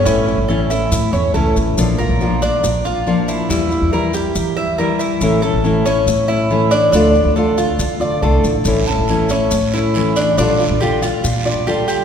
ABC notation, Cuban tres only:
X:1
M:4/4
L:1/8
Q:1/4=140
K:Aphr
V:1 name="Cuban tres"
^C2 A E2 ^c A z | z B2 D2 F2 E | E2 B G2 e B E- | E A2 ^C2 E2 D |
D2 A F2 d A z | z A2 ^C2 E2 D | D2 G F2 d G G |]